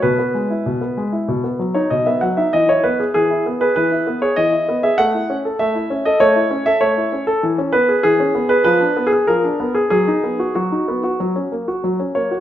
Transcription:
<<
  \new Staff \with { instrumentName = "Grand piano" } { \time 4/4 \key e \major \tempo 4 = 97 b'2~ b'8. cis''16 dis''16 e''16 fis''16 e''16 | dis''16 cis''16 b'8 gis'8. b'16 b'8. cis''16 dis''8. e''16 | fis''4 e''8. dis''16 cis''8. e''16 cis''8. a'16 | \key b \major r8 b'8 gis'8. b'16 \tuplet 3/2 { ces''4 aes'8 } ais'8. aes'16 |
gis'4 fis'2 r8 cis''8 | }
  \new Staff \with { instrumentName = "Grand piano" } { \time 4/4 \key e \major b,16 b16 gis16 e'16 b,16 b16 gis16 e'16 b,16 b16 fis16 dis'16 b,16 b16 fis16 dis'16 | e16 e'16 b16 gis'16 e16 e'16 b16 gis'16 e16 e'16 b16 gis'16 e16 e'16 b16 gis'16 | a16 e'16 cis'16 a'16 a16 e'16 cis'16 a'16 a16 e'16 cis'16 a'16 a16 e'16 cis'16 r16 | \key b \major e16 cis'16 b16 gis'16 e16 cis'16 b16 gis'16 f16 d'16 ces'16 aes'16 f16 d'16 ces'16 r16 |
fis16 dis'16 b16 fis'16 fis16 dis'16 b16 fis'16 fis16 cis'16 ais16 fis'16 fis16 cis'16 ais16 fis'16 | }
>>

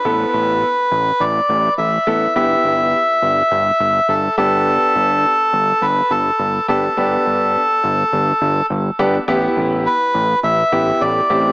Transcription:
<<
  \new Staff \with { instrumentName = "Melodica" } { \time 4/4 \key e \phrygian \tempo 4 = 104 b'2 d''4 e''4 | e''2. a'8 a'8~ | a'2 b'8 a'4 a'8~ | a'2. r4 |
r4 b'4 e''4 d''4 | }
  \new Staff \with { instrumentName = "Grand piano" } { \time 4/4 \key e \phrygian <b e' a'>4 r2 r8 <b e' a'>16 r16 | <b e' g'>4 r2 r8 <b d' g'>8~ | <b d' g'>4 r2 r8 <b d' g'>16 r16 | <b d' g'>4 r2 r8 <b d' g'>16 r16 |
<b e' g'>4 r4. <b e' g'>4 <c' e' g'>8 | }
  \new Staff \with { instrumentName = "Analog synth bass" } { \clef bass \time 4/4 \key e \phrygian a,,8 a,,8. r16 a,,8 a,,8 a,,8 a,,8 a,,8 | g,,8 g,,8. r16 g,,8 g,,8 g,,8 g,,8 g,,8~ | g,,8 g,,8. r16 g,,8 g,,8 g,,8 g,,8 g,,8 | g,,8 g,,8. r16 g,,8 g,,8 g,,8 g,,8 g,,8 |
a,,8 a,,8. r16 a,,8 a,,8 a,,8 a,,8 a,,8 | }
>>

